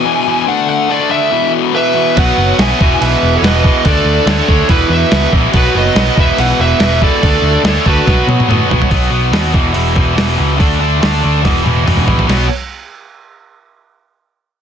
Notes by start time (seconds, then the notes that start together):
Already playing: E3 B3 F#4 G#5
0.05 E2 B2 E3
0.27 E2 B2 E3
0.46 D3 A3 D4 A4 E5 F#5
0.69 F#5
0.89 D3 A3 D4 D5
1.10 D3 A3 D4 E5
1.31 E2 B2 E3 B3 F#4
1.73 E2 B2 E3 B4 E5
1.95 E2 B2 E3
2.17 B1 B2 F#3 B3 B4 C#5 F#5, kick, crash
2.37 F#1
2.58 B1 B2 F#3 B3 E5 G#5, snare, crash
2.79 E1 E2 B2 E3 B3 F#4, kick
3.00 B1 E2 B2 E3 B4 E5, crash
3.23 E1
3.36 A4 C#5
3.42 E1 E2 B2 E3 B4 D#5, snare, crash
3.64 E2 B2 E3, kick
3.84 D2 D3 A3 D4 A4 E5, kick, crash
3.88 D5
4.05 D2
4.26 D2 D3 A3 D4 A4, snare, crash
4.30 C#5
4.48 D2 D3 A3 D4, kick
4.67 E1 E2 B2 E3 E4 F#4, kick, crash
4.71 E3 B3 B4
4.89 E2 B4 E5
5.10 C#2 E2 B2 E3, snare, crash
5.32 A#1 E2 B2 E3, kick
5.52 B1 B2 F#3 B3 F#4 C#5, kick, crash
5.57 B4
5.75 F#1 B4 D#5
5.94 B1 B2 F#3 B3, snare, crash
6.15 E1 E2 B2 E3, kick
6.19 B4 E5
6.37 B1 E2 B2 E3 B4 F#5, crash
6.59 E1 B4 E5
6.79 E1 E2 B2 E3, snare, crash
7.01 E2 B2 E3 A4 D5, kick
7.21 D2 D3 A3 D4 A4 E5, kick, crash
7.42 D2
7.63 D2 D3 A3 D4 A4, snare, crash
7.68 C#5
7.85 D2 D3 A3 D4 F#4 B4, kick
8.04 B1 B2 F#3 B3 F#4 C#5, kick, snare
8.27 B2, high tom
8.40 high tom
8.48 A2 B2 F#3 B3, mid tom
8.69 B1 B2 F#3 B3, floor tom
8.82 floor tom
8.89 B1 B2 F#3 B3, kick, open hi-hat
9.10 B1 B2 F#3 B3
9.32 D#2 B2 F#3 B3, snare, open hi-hat
9.53 E1 E2 B2 E3, kick
9.74 E1 E2 B2 E3, open hi-hat
9.95 E1 E2 B2 E3, kick
10.16 E1 E2 B2 E3, snare, open hi-hat
10.37 C#2 E2 B2 E3
10.58 D2 D3 A3 D4, kick, open hi-hat
10.80 D3 A3 D4
11.01 D2 D3 A3 D4, snare, open hi-hat
11.21 D2 D3 A3 D4
11.42 E1 E2 B2 E3, kick, snare, open hi-hat
11.64 E1 E2 B2 E3, high tom
11.85 E1 E2 B2 E3, open hi-hat, mid tom
11.97 mid tom
12.05 A1 E2 B2 E3, floor tom
12.19 floor tom
12.27 B1 B2 F#3 B3, snare, crash